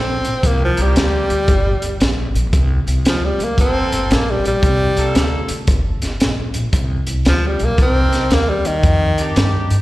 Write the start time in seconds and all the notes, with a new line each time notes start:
Already playing: A#1 C4
0.24 A#1, closed hi-hat
0.43 C2 A#3, kick, closed hi-hat
0.64 F3
0.77 C2 A#3 F4 G4, closed hi-hat
0.82 G3
0.96 D2, snare, closed hi-hat
1.30 D2, closed hi-hat
1.48 G1, kick, closed hi-hat
1.82 G1, closed hi-hat
2.00 A#1, snare, closed hi-hat
2.34 A#1, closed hi-hat
2.53 C2, kick, closed hi-hat
2.87 C2, closed hi-hat
3.05 D2 F3, snare, closed hi-hat
3.25 G3
3.39 D2, closed hi-hat
3.44 A#3
3.58 G1 A#3 C4 F4 A4, kick, closed hi-hat
3.92 G1, closed hi-hat
4.11 A#1 A#3, snare, closed hi-hat
4.30 G3
4.44 A#1 G3, closed hi-hat
4.62 C2, kick, closed hi-hat
4.97 C2 A#3 F4 A4, closed hi-hat
5.15 D2, snare, closed hi-hat
5.48 D2, closed hi-hat
5.67 G1, kick, closed hi-hat
6.02 G1, snare, closed hi-hat
6.20 A#1, snare, closed hi-hat
6.54 A#1, closed hi-hat
6.73 C2, kick, closed hi-hat
7.07 C2, closed hi-hat
7.25 D2 F3, snare, closed hi-hat
7.47 G3
7.59 B1, closed hi-hat
7.64 A#3
7.78 C2 D4 D#4 A#4, kick, closed hi-hat
7.82 C4
8.12 C2, snare, closed hi-hat
8.30 D#2 A#3, snare, closed hi-hat
8.49 G3
8.65 D#2 D#3, closed hi-hat
8.83 F2, kick, closed hi-hat
9.18 F2 D4 D#4 G4, closed hi-hat
9.36 G2, snare, closed hi-hat
9.70 G2, closed hi-hat